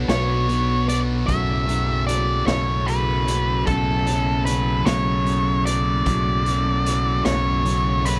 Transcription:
Already playing: distorted electric guitar F#3, tonewheel organ B3 D4 F#4 A4 B4
0.08 fingered electric bass B1, distorted electric guitar B2 F#3 B3, lead electric guitar C#5, snare, closed hi-hat
0.48 distorted electric guitar B2 F#3 B3, closed hi-hat
0.87 distorted electric guitar F#3 B3, lead electric guitar D5, closed hi-hat
1.27 fingered electric bass B1, distorted electric guitar F#2 C#3 F#3, tonewheel organ C#3 A3 E4, lead electric guitar E5, kick, closed hi-hat
1.67 distorted electric guitar C#3 F#3, closed hi-hat
2.07 lead electric guitar D5, closed hi-hat
2.46 fingered electric bass B1, distorted electric guitar F#2 C#3 F#3, lead electric guitar C#5, snare, closed hi-hat
2.86 distorted electric guitar F#2 C#3 F#3, lead electric guitar B4, closed hi-hat
3.26 distorted electric guitar C#3 F#3, closed hi-hat
3.67 fingered electric bass B1, distorted electric guitar F#2 C#3 F#3, lead electric guitar A4, kick, closed hi-hat
4.07 distorted electric guitar C#3 F#3, closed hi-hat
4.45 lead electric guitar B4, closed hi-hat
4.85 fingered electric bass B1, distorted electric guitar F#2 C#3 F#3, lead electric guitar C#5, snare, closed hi-hat
5.25 distorted electric guitar F#2 C#3 F#3, closed hi-hat
5.66 distorted electric guitar C#3 F#3, lead electric guitar D5, closed hi-hat
6.05 fingered electric bass B1, distorted electric guitar F#2 C#3 F#3, kick, closed hi-hat
6.44 distorted electric guitar C#3 F#3, closed hi-hat
6.86 closed hi-hat
7.25 fingered electric bass B1, distorted electric guitar F#2 C#3 F#3, lead electric guitar C#5, snare, closed hi-hat
7.63 distorted electric guitar F#2 C#3 F#3, closed hi-hat
8.04 distorted electric guitar C#3 F#3, lead electric guitar B4, closed hi-hat

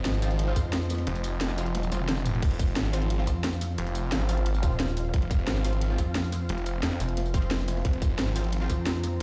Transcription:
Already playing: analog synth pad F3 C4 C5 D#5
0.05 detuned saw bass G#1, snare, closed hi-hat, ride
0.14 snare, tambourine
0.22 synth stab F3 C4 F4, cross-stick, closed hi-hat, tambourine
0.31 closed hi-hat
0.39 closed hi-hat, ride
0.47 synth stab F3 C4 F4, cross-stick, snare
0.56 wobble bass F2, kick, closed hi-hat, ride, tambourine
0.65 ride
0.73 snare, closed hi-hat, ride
0.81 snare, tambourine
0.89 snare, closed hi-hat, ride, tambourine
0.94 snare, ride
0.97 snare, ride
1.07 detuned saw bass F1, closed hi-hat, ride
1.15 snare, closed hi-hat, tambourine
1.24 closed hi-hat, ride, tambourine
1.41 detuned saw bass F1, snare, closed hi-hat, ride
1.49 snare, tambourine
1.58 synth stab F3 C4 F4, closed hi-hat, ride, tambourine
1.66 closed hi-hat, ride
1.75 snare, closed hi-hat, high tom, ride
1.83 snare, closed hi-hat, high tom, tambourine
1.92 detuned saw bass F1, synth stab F3 C4 F4, closed hi-hat, high tom, ride, tambourine
2.00 mid tom
2.09 snare, closed hi-hat, mid tom, ride
2.17 ride, tambourine
2.26 closed hi-hat, mid tom, ride, tambourine
2.34 mid tom, ride
2.42 detuned saw bass F1, analog synth pad F3 C4 C5 F5, kick, closed hi-hat, crash, ride
2.50 closed hi-hat, ride
2.59 kick, closed hi-hat, ride, tambourine
2.68 ride
2.76 detuned saw bass G#1, snare, closed hi-hat, ride
2.85 snare, tambourine
2.93 synth stab F3 C4 F4, cross-stick, open hi-hat, ride, tambourine
3.02 closed hi-hat
3.10 closed hi-hat, ride
3.18 synth stab F3 C4 F4, cross-stick, snare
3.27 wobble bass F2, kick, closed hi-hat, ride, tambourine
3.44 snare, closed hi-hat, ride
3.53 snare, tambourine
3.61 snare, open hi-hat, ride, tambourine
3.78 detuned saw bass F1, closed hi-hat, ride
3.86 snare, closed hi-hat
3.95 closed hi-hat, ride, tambourine
4.12 detuned saw bass G#1, snare, closed hi-hat, ride
4.20 snare, tambourine
4.28 synth stab F3 C4 F4, open hi-hat, ride, tambourine
4.37 closed hi-hat
4.46 closed hi-hat, ride
4.54 snare, tambourine
4.63 wobble bass D#1, synth stab F3 C4 F4, kick, closed hi-hat, ride, tambourine
4.71 snare
4.80 snare, closed hi-hat, ride
4.88 ride, tambourine
4.97 open hi-hat, ride, tambourine
5.04 ride
5.14 detuned saw bass F1, kick, closed hi-hat, ride
5.22 closed hi-hat, ride
5.31 kick, closed hi-hat, ride, tambourine
5.39 ride
5.47 detuned saw bass G#1, snare, closed hi-hat, ride
5.56 snare, tambourine
5.64 synth stab F3 C4 F4, cross-stick, open hi-hat, ride, tambourine
5.73 closed hi-hat
5.81 closed hi-hat, ride
5.89 synth stab F3 C4 F4, cross-stick, snare
5.98 wobble bass F2, kick, closed hi-hat, ride, tambourine
6.15 snare, closed hi-hat, ride
6.24 snare, tambourine
6.32 snare, open hi-hat, ride, tambourine
6.49 detuned saw bass F1, closed hi-hat, ride
6.58 snare, closed hi-hat
6.66 closed hi-hat, ride, tambourine
6.83 detuned saw bass F2, snare, closed hi-hat, ride
6.92 snare, tambourine
7.00 wobble bass F1, open hi-hat, ride, tambourine
7.09 closed hi-hat, ride
7.17 snare, closed hi-hat, ride
7.25 snare, tambourine
7.34 synth stab F3 C4 F4, kick, closed hi-hat, ride, tambourine
7.42 ride
7.51 snare, closed hi-hat, ride
7.55 snare, ride
7.59 snare, ride, tambourine
7.68 snare, open hi-hat, ride, tambourine
7.77 snare, ride
7.85 detuned saw bass F1, analog synth pad A#5, kick, closed hi-hat, ride
7.93 closed hi-hat, ride
8.02 kick, closed hi-hat, ride, tambourine
8.10 ride
8.19 detuned saw bass G#1, snare, closed hi-hat, ride
8.27 snare, tambourine
8.36 synth stab F3 C4 F4, cross-stick, open hi-hat, ride, tambourine
8.44 closed hi-hat
8.52 closed hi-hat, ride
8.60 synth stab F3 C4 F4, cross-stick, snare
8.70 wobble bass F2, kick, closed hi-hat, ride, tambourine
8.86 snare, closed hi-hat, ride
8.95 snare, tambourine
9.03 snare, open hi-hat, ride, tambourine

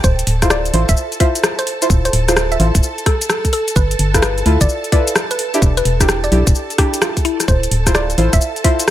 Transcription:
0.04 fm bass D1, violin section A4 A5, synth pluck C5, kick, shaker
0.19 closed hi-hat, shaker
0.27 fm bass D1, open hi-hat
0.42 synth stab E4 F4 C5, kick, cross-stick, closed hi-hat, shaker
0.50 synth pluck D5, cross-stick, shaker
0.65 closed hi-hat, shaker
0.74 fm bass A1, synth stab E4 F4 C5, open hi-hat
0.89 fm bass D1, synth pluck E5, kick, closed hi-hat, shaker
0.97 shaker
1.12 closed hi-hat, shaker
1.20 synth stab E4 F4 C5, synth pluck E5, kick, open hi-hat
1.35 closed hi-hat, shaker
1.44 cross-stick, shaker
1.59 synth pluck C5, closed hi-hat, shaker
1.67 open hi-hat
1.82 synth stab E4 F4 C5, closed hi-hat, shaker
1.90 fm bass D1, kick, shaker
2.05 synth pluck C5, closed hi-hat, shaker
2.13 fm bass D1, open hi-hat
2.28 synth stab E4 F4 C5, cross-stick, closed hi-hat, shaker
2.37 cross-stick, shaker
2.52 synth pluck E5, closed hi-hat, shaker
2.60 fm bass A1, synth stab E4 F4 C5, open hi-hat
2.75 fm bass D1, kick, closed hi-hat, shaker
2.83 shaker
2.98 closed hi-hat, shaker
3.06 synth pluck A4, kick, cross-stick, open hi-hat
3.21 closed hi-hat, shaker
3.30 synth pluck A4, cross-stick, shaker
3.45 kick, closed hi-hat, shaker
3.53 synth pluck A4, open hi-hat
3.68 closed hi-hat, shaker
3.76 fm bass G1, synth pluck B4, kick, shaker
3.91 closed hi-hat, shaker
3.99 fm bass G1, open hi-hat
4.14 synth stab E4 F4 A4 B4, kick, cross-stick, closed hi-hat, shaker
4.22 synth pluck B4, cross-stick, shaker
4.38 closed hi-hat, shaker
4.46 fm bass D2, synth stab E4 F4 A4 B4, open hi-hat
4.61 fm bass G1, synth pluck D5, kick, closed hi-hat, shaker
4.69 shaker
4.84 closed hi-hat, shaker
4.92 synth stab E4 F4 A4 B4, synth pluck D5, kick, open hi-hat
5.07 closed hi-hat, shaker
5.16 cross-stick, shaker
5.31 synth pluck B4, closed hi-hat, shaker
5.39 open hi-hat
5.54 synth stab D4 E4 G4, closed hi-hat, shaker
5.62 fm bass E1, kick, shaker
5.77 synth pluck B4, closed hi-hat, shaker
5.85 fm bass E1, open hi-hat
6.00 synth stab D4 E4 G4, kick, cross-stick, closed hi-hat, shaker
6.09 cross-stick, shaker
6.24 synth pluck D5, closed hi-hat, shaker
6.32 fm bass B1, synth stab D4 E4 G4, open hi-hat
6.47 fm bass E1, kick, closed hi-hat, shaker
6.55 shaker
6.70 closed hi-hat, shaker
6.78 synth stab D4 E4 G4, synth pluck G4, kick, cross-stick, open hi-hat
6.94 closed hi-hat, shaker
7.02 synth pluck F4, cross-stick, shaker
7.17 kick, closed hi-hat, shaker
7.25 synth pluck E4, open hi-hat
7.40 cross-stick, closed hi-hat, shaker
7.48 fm bass D1, violin section A4 A5, synth pluck C5, kick, shaker
7.63 closed hi-hat, shaker
7.71 fm bass D1, open hi-hat
7.87 synth stab E4 F4 C5, kick, cross-stick, closed hi-hat, shaker
7.95 synth pluck D5, cross-stick, shaker
8.10 closed hi-hat, shaker
8.18 fm bass A1, synth stab E4 F4 C5, open hi-hat
8.33 fm bass D1, synth pluck E5, kick, closed hi-hat, shaker
8.41 shaker
8.56 closed hi-hat, shaker
8.64 synth stab E4 F4 C5, synth pluck E5, kick, open hi-hat
8.80 closed hi-hat, shaker

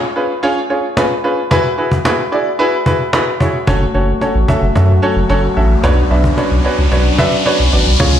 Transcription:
0.16 grand piano C#4 F4 G#4 B4
0.43 grand piano C#4 F4 G#4 C#5
0.70 grand piano C#4 F4 G#4 C#5
0.97 grand piano C#4 F4 G#4 B4, cajon slap
1.24 grand piano C#4 F4 G#4 B4
1.51 grand piano E4 F#4 G#4 B4, cajon bass
1.78 grand piano E4 F#4 G#4 B4
1.91 cajon bass
2.05 grand piano E4 F#4 G#4 B4, cajon slap
2.32 grand piano E4 F#4 G#4 D5
2.59 grand piano E4 F#4 G#4 B4
2.86 grand piano E4 F#4 G#4 B4, cajon bass
3.13 grand piano E4 F#4 G#4 B4, cajon slap
3.40 grand piano E4 F#4 G#4 C#5, cajon bass
3.67 sub bass F#1, supersaw synth F#3 A3 C#4 F#4, grand piano C#4 F#4 A4 C#5, cajon bass, cajon slap, riser
3.94 sub bass F#1, grand piano C#4 F#4 A4 C#5
4.21 grand piano C#4 F#4 A4 C#5, cajon slap
4.35 sub bass A1
4.48 grand piano C#4 F#4 A4 E5, cajon bass
4.62 sub bass F#1
4.75 sub bass F#2, grand piano C#4 F#4 A4 E5, cajon bass, cajon slap
5.02 grand piano C#4 F#4 A4 C#5
5.16 sub bass F#1
5.29 sub bass F#1, grand piano C#4 F#4 A4 C#5, cajon slap
5.56 sub bass A1, grand piano C#4 F#4 A4 E5
5.83 sub bass B1, supersaw synth B3 D4, grand piano D4 F#4 B4 C#5, cajon bass, cajon slap
6.10 sub bass B1, grand piano D4 F#4 B4 E5
6.24 cajon bass
6.37 grand piano D4 F#4 B4 C#5, cajon slap
6.51 sub bass B1
6.64 grand piano D4 F#4 B4 C#5
6.78 sub bass C#2
6.92 sub bass B1, grand piano D4 F#4 B4 C#5, cajon slap
7.18 grand piano D4 F#4 B4 E5, cajon bass
7.45 grand piano D4 F#4 B4 C#5, cajon slap
7.59 sub bass B1
7.72 sub bass A1, grand piano D4 F#4 B4 D5
7.86 sub bass B1
7.99 sub bass C#2, supersaw synth F3 G#3 F4, grand piano C#4 F4 G#4 C#5, cajon bass, cajon slap

